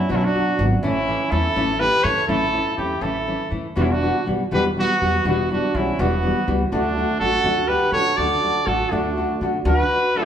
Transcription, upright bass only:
0.10 B1
0.59 G#1
0.83 A1
1.32 E2
1.56 A1
2.04 A2
2.29 A1
2.78 E2
3.01 A1
3.52 A2
3.77 E1
4.27 B1
4.52 E1
5.02 E2
5.25 E1
5.74 B1
5.99 E1
6.48 C#2
6.72 D2
7.21 A1
7.44 D2
7.92 D3
8.18 D2
8.67 A1
8.91 D2
9.41 D3
9.65 D2

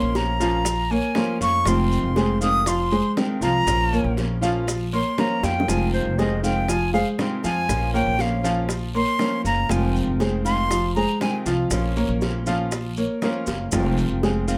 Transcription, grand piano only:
Already playing: A#3 A#4 C#5
0.40 F3 F4 F5
0.91 A#3 A#4 C#5
1.16 A#3 A#4 C#5
1.66 F3 F4 F5
2.16 G#3 G#4 C5
2.66 F3 F4 F5
2.92 G#3 G#4 C5
3.42 F3 F4 F5
3.92 A#3 A#4 C#5
4.42 F3 F4 F5
4.93 A#3 A#4 C#5
5.18 A#3 A#4 C#5
5.68 F3 F4 F5
6.19 G#3 G#4 C5
6.69 F3 F4 F5
6.94 G#3 G#4 C5
7.44 F3 F4 F5
7.94 A#3 A#4 C#5
8.44 F3 F4 F5
8.95 A#3 A#4 C#5
9.20 A#3 A#4 C#5
9.70 F3 F4 F5
10.20 G#3 G#4 C5
10.71 F3 F4 F5
10.96 G#3 G#4 C5
11.46 F3 F4 F5
11.96 A#3 A#4 C#5
12.47 F3 F4 F5
12.97 A#3 A#4 C#5
13.22 A#3 A#4 C#5
13.73 F3 F4 F5
14.23 G#3 G#4 C5

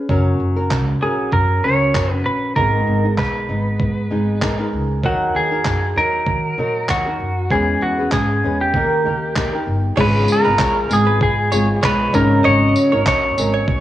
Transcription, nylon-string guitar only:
0.09 F#3 C#4 F#4 A#4
0.56 C#4 F#4 A#4
1.01 F#3 C#4 F#4 A#4
1.64 F#3 C#4 F#4 A#4
1.94 F#3 C#4 F#4 A#4
2.12 C#4 F#4
2.56 G#2 D#3 G#3 B3 D#4 A#4
3.05 G#3 B3 D#4
3.49 G#3 B3 D#4
4.10 G#3 B3 D#4
4.41 G#3 B3 D#4 A#4
4.58 G#3 B3 D#4 A#4
5.03 D#3 F#3 D#4 F#4 A#4
5.51 D#4 F#4 A#4
5.96 F#3 D#4 F#4 A#4
6.58 F#3 D#4 F#4 A#4
6.89 F#3 D#4 F#4 A#4
7.06 D#4 F#4 A#4
7.51 E3 G#3 C#4 G#4 B4
7.99 C#4 G#4 B4
8.43 G#3 C#4 G#4 B4
8.74 D#3 A#3 D#4 G4 A#4
9.05 A#3 D#4 G4 A#4
9.35 A#3 D#4 G4 A#4
9.53 D#4 G4 A#4
9.97 G#2 C#3 G#3 B3 F4 G#4
10.45 G#3 B3 F4 G#4
10.89 G#3 B3 F4 G#4
11.51 G#3 B3 F4 G#4
11.82 G#3 B3 F4 G#4
12.13 G#2 C#3 F#3 C#4 D#4 A#4
12.93 F#3 C#4 D#4 A#4
13.37 F#3 C#4 D#4 A#4

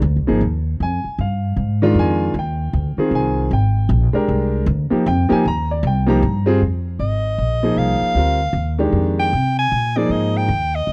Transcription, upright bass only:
0.02 D2
0.16 C2
0.29 G#1
0.41 D#2
0.80 F2
1.04 muted upright bass stroke
1.18 G2
1.56 G#2
1.94 F2
2.34 D#2
2.73 D2
2.97 muted upright bass stroke
3.11 C2
3.51 G#1
3.89 A#1
4.13 muted upright bass stroke
4.28 C2
4.66 D2
4.91 muted upright bass stroke
5.06 F2
5.31 muted upright bass stroke
5.45 D#2
5.83 C2
6.22 G2
6.62 F2
6.99 G#1
7.38 A#1
7.76 C2
8.01 muted upright bass stroke
8.15 D2
8.53 D#2
8.92 F2
9.33 C3
9.72 A#2
10.09 G#2
10.48 D#2
10.87 D2

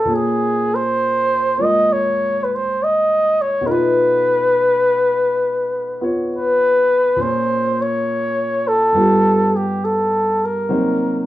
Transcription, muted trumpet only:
Already playing: A4
0.15 G#4
0.75 C5
1.64 D#5
1.92 C#5
2.44 B4
2.55 C5
2.83 D#5
3.41 C#5
3.67 A#4
3.71 B4
6.35 B4
7.21 C5
7.82 C#5
8.68 A4
9.56 G4
9.84 A4
10.45 A#4

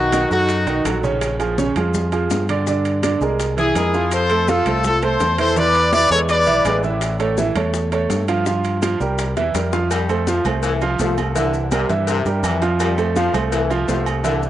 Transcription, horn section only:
Already playing: D#4 F#4
0.32 D#4 F#4
3.59 E4 G#4
4.14 A4 C5
4.50 F4 A4
4.86 F4 A4
5.04 A4 C5
5.40 A4 C5
5.58 B4 D5
5.94 B4 D5
6.12 A4 C#5
6.31 B4 D5

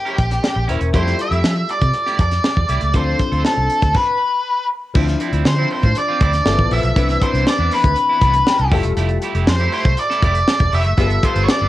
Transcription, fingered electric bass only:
0.18 A#1
0.56 A#1
0.68 D#1
0.81 E1
0.94 F2
1.31 F2
1.44 F3
1.81 C3
2.19 F2
2.57 E2
2.69 C2
2.82 C#2
2.94 D2
3.32 D2
3.57 C2
3.83 D2
4.95 D2
5.33 D2
5.45 D3
5.83 A2
6.21 D2
6.46 G1
6.59 A1
6.71 A#1
6.83 B1
6.96 C2
7.34 C2
7.59 E2
7.84 D2
8.21 C2
8.59 C2
8.72 F1
8.85 E1
8.97 F1
9.35 F1
9.47 F2
9.85 C2
10.23 F1
10.60 E1
10.73 F1
10.86 F#1
10.98 G1
11.36 G1
11.61 G1

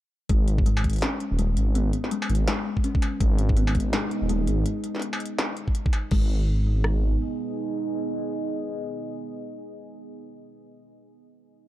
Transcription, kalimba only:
0.30 G#3
0.66 G#3
1.02 C#4
1.39 G#3
1.75 B3
2.11 G#3
2.48 G#3
2.84 C#4
3.21 G#3
3.57 B3
3.93 G#3
4.30 G#3
6.12 G#3

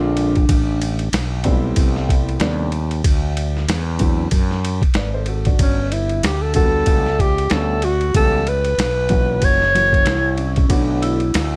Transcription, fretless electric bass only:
Already playing: A#1
0.49 A1
1.12 B1
1.77 C2
2.40 D#2
3.04 D2
3.68 E2
4.32 F#2
4.82 muted fretless electric bass stroke
4.95 G#1
5.60 G1
6.23 D2
6.87 C#2
7.51 D2
8.15 C#2
8.78 B1
9.43 F#1
10.06 C2
10.70 B1
11.35 D2

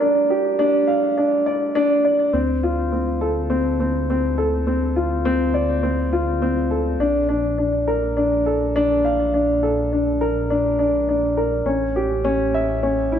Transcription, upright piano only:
Already playing: A#4
0.00 D4
0.30 G4
0.59 D4
0.87 F5
1.18 D4
1.46 D5
1.75 D4
2.05 D5
2.33 C4
2.63 F4
2.92 C4
3.21 A4
3.50 C4
3.80 C4
4.10 C4
4.38 A4
4.67 C4
4.96 F4
5.25 C4
5.54 D5
5.83 C4
6.13 F4
6.42 C4
6.71 A4
7.00 D4
7.29 D4
7.58 D4
7.88 A#4
8.17 D4
8.46 A4
8.76 D4
9.05 F5
9.34 D4
9.63 A4
9.93 D4
10.21 A#4
10.50 D4
10.79 D4
11.09 D4
11.37 A#4
11.66 C#4
11.96 G4
12.24 C#4
12.54 E5
12.83 C#4
13.12 E4

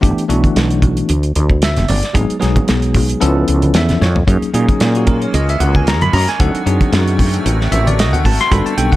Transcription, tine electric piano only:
0.01 E3 A3 B3 D4 G4
0.28 E3 A3 B3 D4 F#4
1.64 E5
1.89 D5
2.13 F#3 G#3 B3 D#4 G#4
2.39 F#3 G#3 B3 D#4 G#4
3.20 F3 B3 C#4 E4 A4
3.76 E5
4.02 C#5
4.27 F#3 A#3 C#4 D#4 G#4
4.53 F#3 A#3 C#4 D#4 G#4
4.97 F#4
5.07 A#4
5.22 C#5
5.35 D#5
5.50 E5
5.60 F#5
5.76 G#5
5.88 A#5
6.02 B5
6.14 A#5
6.29 G#5
6.39 F#3 C4 D4 D#4 A4 F#5
6.66 F#3 C4 D4 D#4 G#4
7.72 E5
7.87 D5
8.00 D#5
8.13 F#5
8.26 A5
8.41 C6
8.51 G3 B3 D4 F#4 A4 B5
8.66 A5
8.78 G3 B3 D4 F#4 A4 G5
8.92 F#5

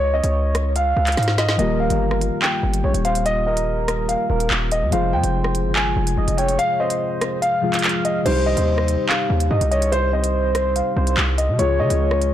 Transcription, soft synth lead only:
0.14 C#5
0.76 F5
1.59 A#4
2.84 C#5
3.05 C5
3.47 A#4
4.30 A#4
4.92 C5
6.18 D#5
6.38 C#5
6.80 C5
7.42 F5
8.26 C5
9.51 D#5
9.72 C#5
10.13 C5
10.97 C5
11.59 C#5

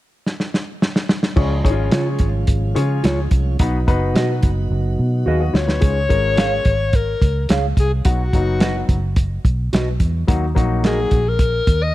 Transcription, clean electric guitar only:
1.92 F4 G#4 C#5
3.03 F4 G#4 C#5
4.15 F#4 B4 D#5
5.26 F#4 B4 D#5
6.37 G#4 C#5 F5
7.50 G#4 C#5 F5
8.61 F#4 B4 D#5
9.73 F#4 B4 D#5
10.84 F#4 A#4 D#5

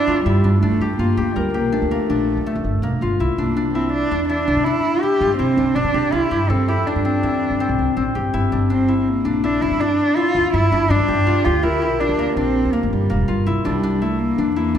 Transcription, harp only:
Already playing: D4 E4 G4
0.08 F4
0.26 E4
0.44 D4
0.62 D4
0.81 G4
0.99 F4
1.17 G4
1.36 A#4
1.54 G4
1.72 D4
1.91 A#3
2.10 D4
2.46 A3
2.83 A#3
3.02 F4
3.20 E4
3.38 D4
3.57 D4
3.75 E4
4.11 D4
4.29 E4
4.48 D4
4.66 D4
5.03 E4
5.21 F4
5.39 E4
5.57 D4
5.76 D4
5.94 G4
6.12 F4
6.31 G4
6.50 A4
6.68 G4
6.87 D4
7.05 C4
7.23 E4
7.60 C4
7.97 C4
8.15 G4
8.34 E4
8.52 D4
8.70 D4
8.88 E4
9.25 D4
9.44 E4
9.62 D4
9.80 D4
10.17 E4
10.35 F4
10.54 E4
10.72 D4
10.90 D4
11.08 G4
11.27 F4
11.45 G4
11.63 A#4
11.82 G4
12.00 D4
12.19 A#3
12.37 D4
12.73 A#3
13.10 A#3
13.28 F4
13.47 E4
13.65 D4
13.83 D4
14.02 E4
14.38 D4
14.56 E4
14.75 D4

